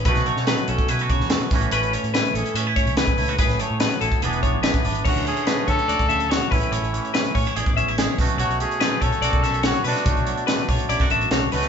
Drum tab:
CC |----------------|----------------|----------------|x---------------|
HH |xxx-xxxxxxx-xxox|xxxxxxxxx-xxxxox|xxx-xxxxxxx-xxox|-xxxx-xxxxxxxxox|
SD |-o-oo------oo---|----o-------o---|-o--o-------oo--|----o-------o---|
BD |o------o--o---o-|----------o--o--|o------o--o--o--|o-----o--o----o-|

CC |----------------|----------------|----------------|
HH |xxxxxxoxxxxxx-ox|xxxxx-xxxxxxxxox|xxxxxxoxxxxxx-ox|
SD |----o-------o-o-|----o-----o-o--o|----o----o--o-oo|
BD |------o--o----o-|------o--o------|o-----o--o------|